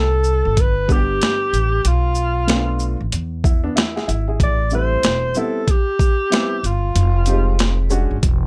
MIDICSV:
0, 0, Header, 1, 5, 480
1, 0, Start_track
1, 0, Tempo, 638298
1, 1389, Time_signature, 4, 2, 24, 8
1, 6368, End_track
2, 0, Start_track
2, 0, Title_t, "Alto saxophone"
2, 0, Program_c, 0, 65
2, 0, Note_on_c, 0, 69, 108
2, 452, Note_on_c, 0, 71, 112
2, 464, Note_off_c, 0, 69, 0
2, 687, Note_on_c, 0, 67, 108
2, 698, Note_off_c, 0, 71, 0
2, 1407, Note_on_c, 0, 65, 98
2, 1418, Note_off_c, 0, 67, 0
2, 2358, Note_off_c, 0, 65, 0
2, 3330, Note_on_c, 0, 74, 105
2, 3543, Note_off_c, 0, 74, 0
2, 3569, Note_on_c, 0, 72, 110
2, 4046, Note_on_c, 0, 69, 97
2, 4057, Note_off_c, 0, 72, 0
2, 4288, Note_on_c, 0, 67, 98
2, 4300, Note_off_c, 0, 69, 0
2, 5006, Note_on_c, 0, 65, 88
2, 5017, Note_off_c, 0, 67, 0
2, 5957, Note_off_c, 0, 65, 0
2, 6368, End_track
3, 0, Start_track
3, 0, Title_t, "Grand piano"
3, 0, Program_c, 1, 0
3, 661, Note_on_c, 1, 55, 74
3, 665, Note_on_c, 1, 59, 70
3, 668, Note_on_c, 1, 62, 67
3, 675, Note_on_c, 1, 66, 67
3, 721, Note_on_c, 1, 67, 85
3, 732, Note_off_c, 1, 66, 0
3, 1348, Note_off_c, 1, 55, 0
3, 1351, Note_off_c, 1, 59, 0
3, 1352, Note_off_c, 1, 62, 0
3, 1378, Note_off_c, 1, 67, 0
3, 1860, Note_on_c, 1, 57, 66
3, 1863, Note_on_c, 1, 59, 59
3, 1868, Note_on_c, 1, 60, 47
3, 1873, Note_on_c, 1, 65, 72
3, 1918, Note_on_c, 1, 62, 60
3, 1929, Note_off_c, 1, 60, 0
3, 2223, Note_off_c, 1, 57, 0
3, 2225, Note_off_c, 1, 59, 0
3, 2230, Note_off_c, 1, 65, 0
3, 2252, Note_off_c, 1, 62, 0
3, 2587, Note_on_c, 1, 64, 63
3, 2729, Note_off_c, 1, 64, 0
3, 2735, Note_on_c, 1, 62, 70
3, 2740, Note_on_c, 1, 59, 55
3, 2823, Note_off_c, 1, 62, 0
3, 2825, Note_off_c, 1, 59, 0
3, 2826, Note_on_c, 1, 64, 70
3, 2969, Note_off_c, 1, 64, 0
3, 2979, Note_on_c, 1, 68, 69
3, 2982, Note_on_c, 1, 64, 56
3, 3055, Note_off_c, 1, 64, 0
3, 3065, Note_off_c, 1, 68, 0
3, 3067, Note_on_c, 1, 64, 69
3, 3209, Note_off_c, 1, 64, 0
3, 3217, Note_on_c, 1, 68, 60
3, 3223, Note_on_c, 1, 64, 54
3, 3445, Note_off_c, 1, 68, 0
3, 3448, Note_off_c, 1, 64, 0
3, 3545, Note_on_c, 1, 55, 64
3, 3547, Note_on_c, 1, 57, 54
3, 3553, Note_on_c, 1, 60, 58
3, 3557, Note_on_c, 1, 64, 69
3, 4013, Note_off_c, 1, 55, 0
3, 4022, Note_off_c, 1, 60, 0
3, 4024, Note_on_c, 1, 55, 73
3, 4026, Note_off_c, 1, 64, 0
3, 4029, Note_on_c, 1, 59, 63
3, 4033, Note_on_c, 1, 60, 62
3, 4037, Note_on_c, 1, 64, 82
3, 4212, Note_off_c, 1, 55, 0
3, 4214, Note_off_c, 1, 59, 0
3, 4216, Note_off_c, 1, 60, 0
3, 4218, Note_off_c, 1, 64, 0
3, 4232, Note_off_c, 1, 57, 0
3, 4738, Note_on_c, 1, 55, 73
3, 4741, Note_on_c, 1, 59, 64
3, 4745, Note_on_c, 1, 60, 63
3, 4752, Note_on_c, 1, 64, 78
3, 4929, Note_off_c, 1, 55, 0
3, 4930, Note_off_c, 1, 59, 0
3, 4932, Note_off_c, 1, 60, 0
3, 4935, Note_off_c, 1, 64, 0
3, 5462, Note_on_c, 1, 55, 49
3, 5465, Note_on_c, 1, 60, 60
3, 5471, Note_on_c, 1, 63, 59
3, 5475, Note_on_c, 1, 67, 72
3, 5511, Note_on_c, 1, 56, 65
3, 5526, Note_off_c, 1, 55, 0
3, 5929, Note_off_c, 1, 56, 0
3, 5940, Note_on_c, 1, 56, 72
3, 5945, Note_on_c, 1, 61, 72
3, 5949, Note_on_c, 1, 62, 69
3, 5953, Note_on_c, 1, 66, 85
3, 6130, Note_off_c, 1, 56, 0
3, 6132, Note_off_c, 1, 61, 0
3, 6134, Note_off_c, 1, 62, 0
3, 6136, Note_off_c, 1, 66, 0
3, 6150, Note_off_c, 1, 60, 0
3, 6153, Note_off_c, 1, 63, 0
3, 6155, Note_off_c, 1, 67, 0
3, 6368, End_track
4, 0, Start_track
4, 0, Title_t, "Upright bass"
4, 0, Program_c, 2, 32
4, 0, Note_on_c, 2, 36, 105
4, 307, Note_off_c, 2, 36, 0
4, 340, Note_on_c, 2, 31, 94
4, 881, Note_off_c, 2, 31, 0
4, 1149, Note_on_c, 2, 33, 88
4, 1355, Note_off_c, 2, 33, 0
4, 1391, Note_on_c, 2, 35, 102
4, 2228, Note_off_c, 2, 35, 0
4, 2260, Note_on_c, 2, 33, 85
4, 2337, Note_off_c, 2, 33, 0
4, 2352, Note_on_c, 2, 40, 97
4, 2763, Note_off_c, 2, 40, 0
4, 3070, Note_on_c, 2, 32, 84
4, 3276, Note_off_c, 2, 32, 0
4, 3307, Note_on_c, 2, 33, 113
4, 3720, Note_off_c, 2, 33, 0
4, 3789, Note_on_c, 2, 28, 81
4, 3995, Note_off_c, 2, 28, 0
4, 4989, Note_on_c, 2, 31, 86
4, 5195, Note_off_c, 2, 31, 0
4, 5229, Note_on_c, 2, 29, 110
4, 6068, Note_off_c, 2, 29, 0
4, 6097, Note_on_c, 2, 32, 78
4, 6176, Note_off_c, 2, 32, 0
4, 6189, Note_on_c, 2, 28, 97
4, 6368, Note_off_c, 2, 28, 0
4, 6368, End_track
5, 0, Start_track
5, 0, Title_t, "Drums"
5, 180, Note_on_c, 9, 82, 52
5, 255, Note_off_c, 9, 82, 0
5, 429, Note_on_c, 9, 36, 91
5, 429, Note_on_c, 9, 42, 82
5, 504, Note_off_c, 9, 36, 0
5, 504, Note_off_c, 9, 42, 0
5, 669, Note_on_c, 9, 36, 98
5, 675, Note_on_c, 9, 82, 47
5, 744, Note_off_c, 9, 36, 0
5, 750, Note_off_c, 9, 82, 0
5, 914, Note_on_c, 9, 42, 71
5, 924, Note_on_c, 9, 38, 107
5, 989, Note_off_c, 9, 42, 0
5, 999, Note_off_c, 9, 38, 0
5, 1156, Note_on_c, 9, 42, 53
5, 1156, Note_on_c, 9, 82, 51
5, 1231, Note_off_c, 9, 42, 0
5, 1231, Note_off_c, 9, 82, 0
5, 1389, Note_on_c, 9, 42, 82
5, 1464, Note_off_c, 9, 42, 0
5, 1617, Note_on_c, 9, 82, 58
5, 1692, Note_off_c, 9, 82, 0
5, 1867, Note_on_c, 9, 42, 77
5, 1877, Note_on_c, 9, 38, 107
5, 1942, Note_off_c, 9, 42, 0
5, 1952, Note_off_c, 9, 38, 0
5, 2101, Note_on_c, 9, 82, 51
5, 2176, Note_off_c, 9, 82, 0
5, 2349, Note_on_c, 9, 42, 85
5, 2424, Note_off_c, 9, 42, 0
5, 2588, Note_on_c, 9, 36, 96
5, 2594, Note_on_c, 9, 82, 51
5, 2663, Note_off_c, 9, 36, 0
5, 2670, Note_off_c, 9, 82, 0
5, 2834, Note_on_c, 9, 42, 71
5, 2844, Note_on_c, 9, 38, 117
5, 2909, Note_off_c, 9, 42, 0
5, 2919, Note_off_c, 9, 38, 0
5, 2989, Note_on_c, 9, 38, 33
5, 3064, Note_off_c, 9, 38, 0
5, 3075, Note_on_c, 9, 42, 52
5, 3075, Note_on_c, 9, 82, 50
5, 3150, Note_off_c, 9, 42, 0
5, 3150, Note_off_c, 9, 82, 0
5, 3308, Note_on_c, 9, 36, 107
5, 3310, Note_on_c, 9, 42, 79
5, 3383, Note_off_c, 9, 36, 0
5, 3385, Note_off_c, 9, 42, 0
5, 3536, Note_on_c, 9, 82, 56
5, 3611, Note_off_c, 9, 82, 0
5, 3785, Note_on_c, 9, 42, 80
5, 3795, Note_on_c, 9, 38, 105
5, 3860, Note_off_c, 9, 42, 0
5, 3870, Note_off_c, 9, 38, 0
5, 4020, Note_on_c, 9, 82, 57
5, 4095, Note_off_c, 9, 82, 0
5, 4268, Note_on_c, 9, 36, 86
5, 4269, Note_on_c, 9, 42, 80
5, 4343, Note_off_c, 9, 36, 0
5, 4344, Note_off_c, 9, 42, 0
5, 4507, Note_on_c, 9, 36, 96
5, 4513, Note_on_c, 9, 82, 52
5, 4583, Note_off_c, 9, 36, 0
5, 4588, Note_off_c, 9, 82, 0
5, 4754, Note_on_c, 9, 42, 72
5, 4764, Note_on_c, 9, 38, 120
5, 4829, Note_off_c, 9, 42, 0
5, 4839, Note_off_c, 9, 38, 0
5, 4995, Note_on_c, 9, 42, 52
5, 4995, Note_on_c, 9, 82, 50
5, 5070, Note_off_c, 9, 42, 0
5, 5070, Note_off_c, 9, 82, 0
5, 5230, Note_on_c, 9, 42, 78
5, 5306, Note_off_c, 9, 42, 0
5, 5458, Note_on_c, 9, 42, 54
5, 5458, Note_on_c, 9, 82, 58
5, 5533, Note_off_c, 9, 42, 0
5, 5533, Note_off_c, 9, 82, 0
5, 5708, Note_on_c, 9, 42, 72
5, 5718, Note_on_c, 9, 38, 110
5, 5783, Note_off_c, 9, 42, 0
5, 5793, Note_off_c, 9, 38, 0
5, 5942, Note_on_c, 9, 82, 54
5, 6017, Note_off_c, 9, 82, 0
5, 6188, Note_on_c, 9, 36, 85
5, 6188, Note_on_c, 9, 42, 85
5, 6263, Note_off_c, 9, 42, 0
5, 6264, Note_off_c, 9, 36, 0
5, 6368, End_track
0, 0, End_of_file